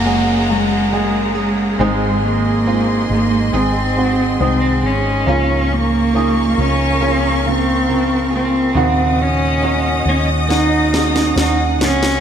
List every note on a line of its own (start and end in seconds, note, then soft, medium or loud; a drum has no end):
0.00 1.76 F#1 medium
0.00 1.81 C#3 medium
0.00 0.05 G#3 medium
0.00 0.06 A#3 medium
0.00 0.52 A#3 medium
0.00 0.06 F#4 medium
0.00 5.24 G#4 medium
0.00 1.77 F#5 medium
0.00 1.76 A#5 medium
0.00 downlifter medium
0.05 1.36 F#3 medium
0.05 0.47 G#3 medium
0.05 0.47 A#3 medium
0.05 1.36 A#3 medium
0.05 1.36 C#4 medium
0.05 0.48 F#4 medium
0.05 1.35 G#4 medium
0.49 0.90 G#3 soft
0.49 1.37 G#3 medium
0.49 0.91 A#3 soft
0.49 0.91 F#4 medium
0.92 1.75 G#3 medium
0.92 1.75 A#3 medium
0.92 1.76 G#4 medium
1.35 2.20 G#3 medium
1.35 1.80 A#3 soft
1.35 1.80 C#4 soft
1.35 1.79 G#4 soft
1.79 3.06 G#1 medium
1.79 2.66 G#2 medium
1.79 3.06 G#2 medium
1.79 2.66 D#3 medium
1.79 3.06 D#3 medium
1.79 2.62 G#3 medium
1.79 2.65 G#3 medium
1.79 2.63 C4 medium
1.79 2.65 C4 medium
1.79 2.66 D#4 medium
1.79 2.63 D#4 medium
1.79 2.68 G#4 medium
1.79 5.24 D#5 medium
1.79 5.24 C6 medium
2.25 3.07 A#3 medium
2.65 3.53 G#3 soft
2.65 3.49 G#3 medium
2.65 3.53 C4 soft
2.65 3.49 C4 medium
2.65 3.53 D#4 medium
2.65 3.50 F4 medium
2.65 3.54 G#4 medium
3.10 3.50 G#1 medium
3.10 3.52 A#3 medium
3.53 4.37 G#1 medium
3.53 4.84 G#2 medium
3.53 4.84 D#3 medium
3.53 3.95 G#3 medium
3.53 4.86 G#3 medium
3.53 3.95 C4 medium
3.53 4.84 C4 medium
3.53 4.38 C4 medium
3.53 3.95 D#4 medium
3.53 4.83 D#4 medium
3.53 4.83 G#4 medium
3.96 4.38 G#3 medium
3.96 4.38 C4 soft
3.96 4.39 F#4 medium
4.40 4.81 C2 medium
4.40 5.23 G#3 medium
4.40 4.87 C4 medium
4.40 5.24 D#4 medium
4.40 5.23 C5 soft
4.83 5.24 G#1 medium
4.83 5.27 G#3 soft
4.83 5.75 C#4 medium
4.83 5.28 D#4 soft
4.83 5.27 G#4 soft
5.26 6.54 C#2 medium
5.26 6.54 G#2 medium
5.26 6.14 C#3 medium
5.26 6.12 F3 medium
5.26 6.10 A#3 medium
5.26 6.14 A#3 medium
5.26 6.10 C#4 medium
5.26 6.10 F4 medium
5.26 6.14 F4 medium
5.26 6.15 G#4 medium
5.26 8.72 A#4 medium
5.26 8.72 F5 medium
5.26 8.72 C#6 medium
5.73 6.61 A#3 medium
6.13 7.00 F3 soft
6.13 6.97 A#3 medium
6.13 7.01 A#3 soft
6.13 6.97 C#4 medium
6.13 6.98 D#4 medium
6.13 7.01 F4 medium
6.13 7.01 G#4 medium
6.58 8.71 C#2 medium
6.58 7.49 C#4 medium
7.00 8.31 C#3 medium
7.00 8.32 F3 medium
7.00 7.42 A#3 medium
7.00 8.33 A#3 medium
7.00 7.43 C#4 medium
7.00 8.31 F4 medium
7.00 7.43 F4 medium
7.00 8.29 G#4 medium
7.44 7.86 C#3 soft
7.44 7.86 A#3 medium
7.44 8.33 C4 medium
7.44 7.87 F4 medium
7.87 8.71 C#3 medium
7.87 8.71 A#3 medium
7.87 8.71 F4 medium
8.31 8.74 A#3 soft
8.31 8.76 F4 soft
8.31 8.75 G#4 soft
8.35 9.23 C4 medium
8.75 10.02 D#2 medium
8.75 10.02 A#2 medium
8.75 9.58 C#3 medium
8.75 9.60 D#3 medium
8.75 9.62 A#3 medium
8.75 9.58 D#4 medium
8.75 9.59 F#4 medium
8.75 9.64 F#4 medium
8.75 12.20 D#5 medium
8.75 12.20 F#5 medium
8.75 12.20 D#6 medium
9.22 10.07 C#4 medium
9.61 10.47 D#3 soft
9.61 10.49 A#3 soft
9.61 10.45 C#4 medium
9.61 10.49 C#4 soft
9.61 10.45 D#4 medium
9.61 10.46 F#4 medium
9.61 10.50 F#4 soft
10.06 11.32 D#2 medium
10.06 10.27 C#4 medium
10.48 11.79 D#3 medium
10.48 11.81 A#3 medium
10.48 10.91 C#4 medium
10.48 11.80 C#4 medium
10.48 10.91 D#4 medium
10.48 11.34 D#4 loud
10.48 10.91 F#4 medium
10.48 11.78 F#4 medium
10.48 snare soft
10.93 11.34 C#4 soft
10.93 11.34 D#4 soft
10.93 11.35 G#4 medium
10.93 snare medium
11.16 snare medium
11.36 11.80 D#2 medium
11.36 12.19 C#4 medium
11.36 12.19 D#4 medium
11.36 11.58 D#4 medium
11.36 12.19 F#4 medium
11.36 snare medium
11.79 12.20 C#2 medium
11.79 12.20 A#3 soft
11.79 12.20 C#4 soft
11.79 12.20 F#4 soft
11.79 snare medium
11.83 12.20 C#4 medium
12.03 snare medium